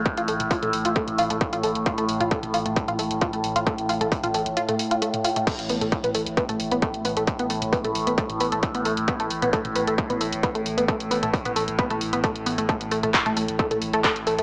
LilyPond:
<<
  \new Staff \with { instrumentName = "Synth arpeggio sound" } { \time 4/4 \key c \major \tempo 4 = 133 r16 f'16 a16 r16 f'16 a16 r16 f'16 a16 r16 f'16 a16 r16 f'16 a16 r16 | f'16 a16 r16 f'16 a16 r16 f'16 a16 r16 f'16 a16 r16 f'16 a16 r16 f'16 | a16 r16 f'16 a16 r16 f'16 a16 r16 f'16 a16 r16 f'16 a16 r16 f'16 a16 | a16 r16 b16 a16 r16 b16 a16 r16 b16 a16 r16 b16 a16 r16 b16 a16 |
r16 b16 a16 r16 b16 a16 r16 b16 a16 r16 b16 a16 r16 b16 a16 r16 | b16 a16 r16 b16 a16 r16 b16 a16 r16 b16 a16 r16 b16 a16 r16 b16 | a16 r16 b16 a16 r16 b16 a16 r16 b16 a16 r16 b16 a16 r16 b16 a16 | a16 r16 a16 a16 r16 a16 a16 r16 a16 a16 r16 a16 a16 r16 a16 a16 | }
  \new Staff \with { instrumentName = "Synth drone" } { \clef bass \time 4/4 \key c \major a,1~ | a,1~ | a,1 | a,1~ |
a,1~ | a,1~ | a,1~ | a,1 | }
  \new Staff \with { instrumentName = "Sub bass" } { \clef bass \time 4/4 \key c \major r16 a,,16 a,,16 a,,16 r16 a,,16 a,,16 a,,16 r16 a,,16 a,,16 a,,16 r16 a,,16 a,,16 a,,16 | r16 a,,16 a,,16 a,,16 r16 a,,16 a,,16 a,,16 r16 a,,16 a,,16 a,,16 r16 a,,16 a,,16 a,,16 | r16 a,,16 a,,16 a,,16 r16 a,,16 a,,16 a,,16 r2 | r16 a,,16 a,,16 a,,16 r16 a,,16 a,,16 a,,16 r16 a,,16 a,,16 a,,16 r16 a,,16 a,,16 a,,16 |
r16 a,,16 a,,16 a,,16 r16 a,,16 a,,16 a,,16 r16 a,,16 a,,16 a,,16 r16 a,,16 a,,16 a,,16 | r16 a,,16 a,,16 a,,16 r16 a,,16 a,,16 a,,16 r16 a,,16 a,,16 a,,16 r16 a,,16 a,,16 a,,16 | r16 a,,16 a,,16 a,,16 r16 a,,16 a,,16 a,,16 r16 a,,16 a,,16 a,,16 r16 a,,16 a,,16 a,,16 | r16 a,,16 a,,16 a,,16 r16 a,,16 a,,16 a,,16 r16 a,,16 a,,16 a,,16 r16 a,,16 a,,16 a,,16 | }
  \new DrumStaff \with { instrumentName = "Drums" } \drummode { \time 4/4 <hh bd>16 hh16 hho16 <hh toml>16 <hho bd>16 <hh toml>16 hho16 hh16 <hh bd>16 <hh toml>16 hho16 hh16 <hh bd>16 hh16 hho16 hh16 | <hh bd>16 hh16 hho16 <hh toml>16 <hh bd>16 <hh toml>16 hho16 hh16 <hh bd>16 <hh toml>16 hho16 hh16 <hh bd>16 hh16 hho16 hh16 | <hh bd>16 hh16 hho16 <hh toml>16 <hho bd>16 <hh toml>16 hho16 hh16 hh16 <hh toml>16 hho16 hh16 hh16 <hh toml>16 hho16 <hh toml>16 | <cymc hh bd>16 hh16 hho16 <hh toml>16 <hh bd>16 <hh toml>16 hho16 hh16 <hh bd>16 <hh toml>16 hho16 hh16 <hh bd>16 hh16 hho16 hh16 |
<hh bd>16 hh16 hho16 <hh toml>16 <hho bd>16 <hh toml>16 hho16 hh16 <hh bd>16 <hh toml>16 hho16 hh16 <hh bd>16 hh16 hho16 hh16 | <hh bd>16 hh16 hho16 <hh toml>16 <hh bd>16 <hh toml>16 hho16 hh16 <hh bd>16 <hh toml>16 hho16 hh16 <hh bd>16 hh16 hho16 hh16 | <hh bd>16 hh16 hho16 <hh toml>16 <hho bd>16 <hh toml>16 hho16 hh16 <hh bd>16 <hh toml>16 hho16 hh16 <hh bd>16 hh16 hho16 hh16 | <hh bd>16 hh16 hho16 <hh toml>16 <hc hh bd>16 <hh toml>16 hho16 hh16 <hh bd>16 <hh toml>16 hho16 hh16 <hc hh bd>16 hh16 hho16 hh16 | }
>>